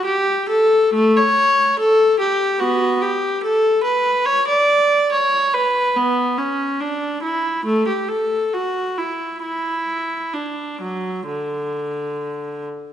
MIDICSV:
0, 0, Header, 1, 2, 480
1, 0, Start_track
1, 0, Key_signature, 2, "major"
1, 0, Tempo, 865801
1, 997, Tempo, 821918
1, 1469, Time_signature, 4, 2, 24, 8
1, 2437, Tempo, 848656
1, 4357, Tempo, 884956
1, 5317, Tempo, 931677
1, 7120, End_track
2, 0, Start_track
2, 0, Title_t, "Viola"
2, 0, Program_c, 0, 41
2, 29, Note_on_c, 0, 67, 82
2, 266, Note_off_c, 0, 67, 0
2, 272, Note_on_c, 0, 69, 78
2, 519, Note_on_c, 0, 57, 88
2, 520, Note_off_c, 0, 69, 0
2, 645, Note_off_c, 0, 57, 0
2, 645, Note_on_c, 0, 73, 85
2, 994, Note_off_c, 0, 73, 0
2, 994, Note_on_c, 0, 69, 82
2, 1225, Note_off_c, 0, 69, 0
2, 1229, Note_on_c, 0, 67, 77
2, 1463, Note_off_c, 0, 67, 0
2, 1465, Note_on_c, 0, 66, 76
2, 1466, Note_on_c, 0, 59, 66
2, 1692, Note_off_c, 0, 59, 0
2, 1708, Note_on_c, 0, 67, 74
2, 1709, Note_off_c, 0, 66, 0
2, 1950, Note_off_c, 0, 67, 0
2, 1950, Note_on_c, 0, 69, 76
2, 2186, Note_off_c, 0, 69, 0
2, 2188, Note_on_c, 0, 71, 79
2, 2431, Note_off_c, 0, 71, 0
2, 2432, Note_on_c, 0, 73, 90
2, 2557, Note_off_c, 0, 73, 0
2, 2557, Note_on_c, 0, 74, 81
2, 2918, Note_off_c, 0, 74, 0
2, 2920, Note_on_c, 0, 73, 77
2, 3158, Note_off_c, 0, 73, 0
2, 3158, Note_on_c, 0, 71, 72
2, 3398, Note_on_c, 0, 59, 72
2, 3400, Note_off_c, 0, 71, 0
2, 3634, Note_on_c, 0, 61, 64
2, 3638, Note_off_c, 0, 59, 0
2, 3871, Note_on_c, 0, 62, 62
2, 3874, Note_off_c, 0, 61, 0
2, 4111, Note_on_c, 0, 64, 59
2, 4113, Note_off_c, 0, 62, 0
2, 4352, Note_off_c, 0, 64, 0
2, 4355, Note_on_c, 0, 57, 70
2, 4472, Note_off_c, 0, 57, 0
2, 4475, Note_on_c, 0, 67, 55
2, 4588, Note_on_c, 0, 69, 61
2, 4591, Note_off_c, 0, 67, 0
2, 4829, Note_off_c, 0, 69, 0
2, 4829, Note_on_c, 0, 66, 60
2, 5073, Note_off_c, 0, 66, 0
2, 5074, Note_on_c, 0, 64, 52
2, 5311, Note_off_c, 0, 64, 0
2, 5318, Note_on_c, 0, 64, 62
2, 5781, Note_off_c, 0, 64, 0
2, 5787, Note_on_c, 0, 62, 48
2, 6031, Note_off_c, 0, 62, 0
2, 6031, Note_on_c, 0, 54, 48
2, 6268, Note_off_c, 0, 54, 0
2, 6269, Note_on_c, 0, 50, 51
2, 6979, Note_off_c, 0, 50, 0
2, 7120, End_track
0, 0, End_of_file